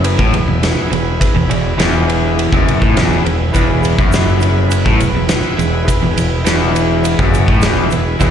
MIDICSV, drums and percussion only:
0, 0, Header, 1, 2, 480
1, 0, Start_track
1, 0, Key_signature, 4, "major"
1, 0, Tempo, 583090
1, 997, Time_signature, 4, 2, 24, 8
1, 6838, End_track
2, 0, Start_track
2, 0, Title_t, "Drums"
2, 36, Note_on_c, 9, 51, 88
2, 118, Note_off_c, 9, 51, 0
2, 156, Note_on_c, 9, 36, 105
2, 239, Note_off_c, 9, 36, 0
2, 277, Note_on_c, 9, 51, 58
2, 359, Note_off_c, 9, 51, 0
2, 519, Note_on_c, 9, 51, 85
2, 524, Note_on_c, 9, 38, 99
2, 602, Note_off_c, 9, 51, 0
2, 607, Note_off_c, 9, 38, 0
2, 763, Note_on_c, 9, 51, 57
2, 845, Note_off_c, 9, 51, 0
2, 997, Note_on_c, 9, 36, 93
2, 1001, Note_on_c, 9, 51, 85
2, 1079, Note_off_c, 9, 36, 0
2, 1083, Note_off_c, 9, 51, 0
2, 1241, Note_on_c, 9, 51, 70
2, 1323, Note_off_c, 9, 51, 0
2, 1477, Note_on_c, 9, 51, 72
2, 1482, Note_on_c, 9, 38, 90
2, 1560, Note_off_c, 9, 51, 0
2, 1565, Note_off_c, 9, 38, 0
2, 1725, Note_on_c, 9, 51, 59
2, 1807, Note_off_c, 9, 51, 0
2, 1967, Note_on_c, 9, 51, 67
2, 2049, Note_off_c, 9, 51, 0
2, 2079, Note_on_c, 9, 36, 101
2, 2161, Note_off_c, 9, 36, 0
2, 2209, Note_on_c, 9, 51, 57
2, 2292, Note_off_c, 9, 51, 0
2, 2320, Note_on_c, 9, 36, 91
2, 2402, Note_off_c, 9, 36, 0
2, 2443, Note_on_c, 9, 51, 76
2, 2448, Note_on_c, 9, 38, 99
2, 2525, Note_off_c, 9, 51, 0
2, 2530, Note_off_c, 9, 38, 0
2, 2686, Note_on_c, 9, 51, 56
2, 2769, Note_off_c, 9, 51, 0
2, 2917, Note_on_c, 9, 82, 81
2, 2920, Note_on_c, 9, 36, 88
2, 2928, Note_on_c, 9, 51, 70
2, 2999, Note_off_c, 9, 82, 0
2, 3002, Note_off_c, 9, 36, 0
2, 3010, Note_off_c, 9, 51, 0
2, 3154, Note_on_c, 9, 82, 58
2, 3167, Note_on_c, 9, 51, 67
2, 3237, Note_off_c, 9, 82, 0
2, 3249, Note_off_c, 9, 51, 0
2, 3281, Note_on_c, 9, 36, 99
2, 3363, Note_off_c, 9, 36, 0
2, 3393, Note_on_c, 9, 82, 93
2, 3404, Note_on_c, 9, 51, 72
2, 3409, Note_on_c, 9, 38, 99
2, 3476, Note_off_c, 9, 82, 0
2, 3486, Note_off_c, 9, 51, 0
2, 3491, Note_off_c, 9, 38, 0
2, 3628, Note_on_c, 9, 82, 63
2, 3643, Note_on_c, 9, 51, 64
2, 3710, Note_off_c, 9, 82, 0
2, 3725, Note_off_c, 9, 51, 0
2, 3876, Note_on_c, 9, 82, 87
2, 3882, Note_on_c, 9, 51, 81
2, 3959, Note_off_c, 9, 82, 0
2, 3964, Note_off_c, 9, 51, 0
2, 3999, Note_on_c, 9, 36, 100
2, 4081, Note_off_c, 9, 36, 0
2, 4119, Note_on_c, 9, 51, 70
2, 4122, Note_on_c, 9, 82, 70
2, 4201, Note_off_c, 9, 51, 0
2, 4205, Note_off_c, 9, 82, 0
2, 4352, Note_on_c, 9, 51, 80
2, 4357, Note_on_c, 9, 38, 106
2, 4359, Note_on_c, 9, 82, 85
2, 4435, Note_off_c, 9, 51, 0
2, 4440, Note_off_c, 9, 38, 0
2, 4441, Note_off_c, 9, 82, 0
2, 4602, Note_on_c, 9, 51, 60
2, 4611, Note_on_c, 9, 82, 76
2, 4685, Note_off_c, 9, 51, 0
2, 4693, Note_off_c, 9, 82, 0
2, 4840, Note_on_c, 9, 36, 81
2, 4842, Note_on_c, 9, 51, 83
2, 4845, Note_on_c, 9, 82, 109
2, 4923, Note_off_c, 9, 36, 0
2, 4924, Note_off_c, 9, 51, 0
2, 4928, Note_off_c, 9, 82, 0
2, 5084, Note_on_c, 9, 51, 79
2, 5084, Note_on_c, 9, 82, 70
2, 5166, Note_off_c, 9, 51, 0
2, 5166, Note_off_c, 9, 82, 0
2, 5320, Note_on_c, 9, 82, 99
2, 5322, Note_on_c, 9, 51, 81
2, 5327, Note_on_c, 9, 38, 92
2, 5402, Note_off_c, 9, 82, 0
2, 5404, Note_off_c, 9, 51, 0
2, 5409, Note_off_c, 9, 38, 0
2, 5562, Note_on_c, 9, 82, 78
2, 5565, Note_on_c, 9, 51, 69
2, 5644, Note_off_c, 9, 82, 0
2, 5647, Note_off_c, 9, 51, 0
2, 5798, Note_on_c, 9, 82, 99
2, 5803, Note_on_c, 9, 51, 77
2, 5881, Note_off_c, 9, 82, 0
2, 5886, Note_off_c, 9, 51, 0
2, 5919, Note_on_c, 9, 36, 116
2, 6002, Note_off_c, 9, 36, 0
2, 6043, Note_on_c, 9, 82, 78
2, 6047, Note_on_c, 9, 51, 54
2, 6125, Note_off_c, 9, 82, 0
2, 6129, Note_off_c, 9, 51, 0
2, 6158, Note_on_c, 9, 36, 92
2, 6241, Note_off_c, 9, 36, 0
2, 6268, Note_on_c, 9, 82, 85
2, 6278, Note_on_c, 9, 51, 85
2, 6283, Note_on_c, 9, 38, 103
2, 6350, Note_off_c, 9, 82, 0
2, 6360, Note_off_c, 9, 51, 0
2, 6365, Note_off_c, 9, 38, 0
2, 6508, Note_on_c, 9, 82, 73
2, 6522, Note_on_c, 9, 51, 52
2, 6591, Note_off_c, 9, 82, 0
2, 6604, Note_off_c, 9, 51, 0
2, 6752, Note_on_c, 9, 82, 77
2, 6756, Note_on_c, 9, 36, 99
2, 6756, Note_on_c, 9, 51, 84
2, 6834, Note_off_c, 9, 82, 0
2, 6838, Note_off_c, 9, 36, 0
2, 6838, Note_off_c, 9, 51, 0
2, 6838, End_track
0, 0, End_of_file